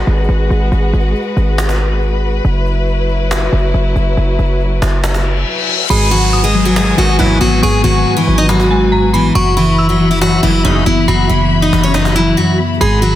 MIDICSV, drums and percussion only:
0, 0, Header, 1, 2, 480
1, 0, Start_track
1, 0, Key_signature, 5, "minor"
1, 0, Tempo, 431655
1, 801, Time_signature, 4, 2, 24, 8
1, 14627, End_track
2, 0, Start_track
2, 0, Title_t, "Cajon"
2, 0, Note_on_c, 9, 38, 33
2, 80, Note_off_c, 9, 38, 0
2, 80, Note_on_c, 9, 38, 35
2, 140, Note_off_c, 9, 38, 0
2, 140, Note_on_c, 9, 38, 35
2, 200, Note_off_c, 9, 38, 0
2, 200, Note_on_c, 9, 38, 36
2, 261, Note_off_c, 9, 38, 0
2, 261, Note_on_c, 9, 38, 34
2, 321, Note_off_c, 9, 38, 0
2, 321, Note_on_c, 9, 38, 36
2, 432, Note_off_c, 9, 38, 0
2, 562, Note_on_c, 9, 38, 44
2, 674, Note_off_c, 9, 38, 0
2, 800, Note_on_c, 9, 38, 43
2, 911, Note_off_c, 9, 38, 0
2, 1040, Note_on_c, 9, 38, 36
2, 1121, Note_off_c, 9, 38, 0
2, 1121, Note_on_c, 9, 38, 35
2, 1201, Note_off_c, 9, 38, 0
2, 1201, Note_on_c, 9, 38, 35
2, 1281, Note_off_c, 9, 38, 0
2, 1281, Note_on_c, 9, 38, 34
2, 1361, Note_off_c, 9, 38, 0
2, 1361, Note_on_c, 9, 38, 34
2, 1441, Note_off_c, 9, 38, 0
2, 1441, Note_on_c, 9, 38, 35
2, 1518, Note_off_c, 9, 38, 0
2, 1518, Note_on_c, 9, 38, 40
2, 1629, Note_off_c, 9, 38, 0
2, 1760, Note_on_c, 9, 38, 112
2, 1820, Note_off_c, 9, 38, 0
2, 1820, Note_on_c, 9, 38, 33
2, 1879, Note_off_c, 9, 38, 0
2, 1879, Note_on_c, 9, 38, 100
2, 1941, Note_off_c, 9, 38, 0
2, 1941, Note_on_c, 9, 38, 24
2, 2001, Note_off_c, 9, 38, 0
2, 2001, Note_on_c, 9, 38, 42
2, 2113, Note_off_c, 9, 38, 0
2, 2240, Note_on_c, 9, 38, 38
2, 2351, Note_off_c, 9, 38, 0
2, 2720, Note_on_c, 9, 38, 43
2, 2832, Note_off_c, 9, 38, 0
2, 2960, Note_on_c, 9, 38, 40
2, 3071, Note_off_c, 9, 38, 0
2, 3199, Note_on_c, 9, 38, 42
2, 3310, Note_off_c, 9, 38, 0
2, 3438, Note_on_c, 9, 38, 42
2, 3550, Note_off_c, 9, 38, 0
2, 3681, Note_on_c, 9, 38, 115
2, 3761, Note_off_c, 9, 38, 0
2, 3761, Note_on_c, 9, 38, 33
2, 3841, Note_off_c, 9, 38, 0
2, 3841, Note_on_c, 9, 38, 33
2, 3920, Note_off_c, 9, 38, 0
2, 3920, Note_on_c, 9, 38, 35
2, 3980, Note_off_c, 9, 38, 0
2, 3980, Note_on_c, 9, 38, 35
2, 4041, Note_off_c, 9, 38, 0
2, 4041, Note_on_c, 9, 38, 34
2, 4101, Note_off_c, 9, 38, 0
2, 4101, Note_on_c, 9, 38, 35
2, 4161, Note_off_c, 9, 38, 0
2, 4161, Note_on_c, 9, 38, 36
2, 4272, Note_off_c, 9, 38, 0
2, 4403, Note_on_c, 9, 38, 44
2, 4514, Note_off_c, 9, 38, 0
2, 4641, Note_on_c, 9, 38, 42
2, 4752, Note_off_c, 9, 38, 0
2, 4881, Note_on_c, 9, 38, 41
2, 4961, Note_off_c, 9, 38, 0
2, 4961, Note_on_c, 9, 38, 34
2, 5040, Note_off_c, 9, 38, 0
2, 5040, Note_on_c, 9, 38, 25
2, 5117, Note_off_c, 9, 38, 0
2, 5117, Note_on_c, 9, 38, 42
2, 5229, Note_off_c, 9, 38, 0
2, 5361, Note_on_c, 9, 38, 97
2, 5472, Note_off_c, 9, 38, 0
2, 5600, Note_on_c, 9, 38, 117
2, 5711, Note_off_c, 9, 38, 0
2, 5719, Note_on_c, 9, 38, 104
2, 5830, Note_off_c, 9, 38, 0
2, 5840, Note_on_c, 9, 38, 36
2, 5952, Note_off_c, 9, 38, 0
2, 5961, Note_on_c, 9, 38, 36
2, 6072, Note_off_c, 9, 38, 0
2, 6080, Note_on_c, 9, 38, 23
2, 6140, Note_off_c, 9, 38, 0
2, 6140, Note_on_c, 9, 38, 28
2, 6200, Note_off_c, 9, 38, 0
2, 6200, Note_on_c, 9, 38, 33
2, 6260, Note_off_c, 9, 38, 0
2, 6260, Note_on_c, 9, 38, 40
2, 6320, Note_off_c, 9, 38, 0
2, 6320, Note_on_c, 9, 38, 28
2, 6400, Note_off_c, 9, 38, 0
2, 6400, Note_on_c, 9, 38, 32
2, 6480, Note_off_c, 9, 38, 0
2, 6480, Note_on_c, 9, 38, 36
2, 6591, Note_off_c, 9, 38, 0
2, 7039, Note_on_c, 9, 38, 43
2, 7150, Note_off_c, 9, 38, 0
2, 7520, Note_on_c, 9, 38, 115
2, 7600, Note_off_c, 9, 38, 0
2, 7600, Note_on_c, 9, 38, 33
2, 7680, Note_off_c, 9, 38, 0
2, 7680, Note_on_c, 9, 38, 34
2, 7761, Note_off_c, 9, 38, 0
2, 7761, Note_on_c, 9, 38, 35
2, 7820, Note_off_c, 9, 38, 0
2, 7820, Note_on_c, 9, 38, 37
2, 7881, Note_off_c, 9, 38, 0
2, 7881, Note_on_c, 9, 38, 35
2, 7941, Note_off_c, 9, 38, 0
2, 7941, Note_on_c, 9, 38, 37
2, 8052, Note_off_c, 9, 38, 0
2, 8960, Note_on_c, 9, 38, 35
2, 9040, Note_off_c, 9, 38, 0
2, 9040, Note_on_c, 9, 38, 34
2, 9151, Note_off_c, 9, 38, 0
2, 9440, Note_on_c, 9, 38, 116
2, 9501, Note_off_c, 9, 38, 0
2, 9501, Note_on_c, 9, 38, 35
2, 9559, Note_off_c, 9, 38, 0
2, 9559, Note_on_c, 9, 38, 104
2, 9620, Note_off_c, 9, 38, 0
2, 9620, Note_on_c, 9, 38, 23
2, 9681, Note_off_c, 9, 38, 0
2, 9681, Note_on_c, 9, 38, 44
2, 9792, Note_off_c, 9, 38, 0
2, 9921, Note_on_c, 9, 38, 39
2, 10032, Note_off_c, 9, 38, 0
2, 10879, Note_on_c, 9, 38, 42
2, 10990, Note_off_c, 9, 38, 0
2, 11118, Note_on_c, 9, 38, 42
2, 11229, Note_off_c, 9, 38, 0
2, 11360, Note_on_c, 9, 38, 113
2, 11440, Note_off_c, 9, 38, 0
2, 11440, Note_on_c, 9, 38, 32
2, 11521, Note_off_c, 9, 38, 0
2, 11521, Note_on_c, 9, 38, 34
2, 11601, Note_off_c, 9, 38, 0
2, 11601, Note_on_c, 9, 38, 37
2, 11661, Note_off_c, 9, 38, 0
2, 11661, Note_on_c, 9, 38, 37
2, 11721, Note_off_c, 9, 38, 0
2, 11721, Note_on_c, 9, 38, 36
2, 11781, Note_off_c, 9, 38, 0
2, 11781, Note_on_c, 9, 38, 37
2, 11841, Note_off_c, 9, 38, 0
2, 11841, Note_on_c, 9, 38, 38
2, 11952, Note_off_c, 9, 38, 0
2, 12641, Note_on_c, 9, 38, 34
2, 12721, Note_off_c, 9, 38, 0
2, 12721, Note_on_c, 9, 38, 26
2, 12799, Note_off_c, 9, 38, 0
2, 12799, Note_on_c, 9, 38, 42
2, 12910, Note_off_c, 9, 38, 0
2, 13042, Note_on_c, 9, 38, 104
2, 13153, Note_off_c, 9, 38, 0
2, 13281, Note_on_c, 9, 38, 117
2, 13393, Note_off_c, 9, 38, 0
2, 13401, Note_on_c, 9, 38, 106
2, 13512, Note_off_c, 9, 38, 0
2, 13522, Note_on_c, 9, 38, 37
2, 13633, Note_off_c, 9, 38, 0
2, 13642, Note_on_c, 9, 38, 36
2, 13753, Note_off_c, 9, 38, 0
2, 13761, Note_on_c, 9, 38, 23
2, 13822, Note_off_c, 9, 38, 0
2, 13822, Note_on_c, 9, 38, 29
2, 13882, Note_off_c, 9, 38, 0
2, 13882, Note_on_c, 9, 38, 34
2, 13942, Note_off_c, 9, 38, 0
2, 13942, Note_on_c, 9, 38, 41
2, 14002, Note_off_c, 9, 38, 0
2, 14002, Note_on_c, 9, 38, 29
2, 14082, Note_off_c, 9, 38, 0
2, 14082, Note_on_c, 9, 38, 32
2, 14162, Note_off_c, 9, 38, 0
2, 14162, Note_on_c, 9, 38, 36
2, 14273, Note_off_c, 9, 38, 0
2, 14322, Note_on_c, 9, 38, 44
2, 14402, Note_off_c, 9, 38, 0
2, 14402, Note_on_c, 9, 38, 49
2, 14480, Note_off_c, 9, 38, 0
2, 14480, Note_on_c, 9, 38, 43
2, 14592, Note_off_c, 9, 38, 0
2, 14627, End_track
0, 0, End_of_file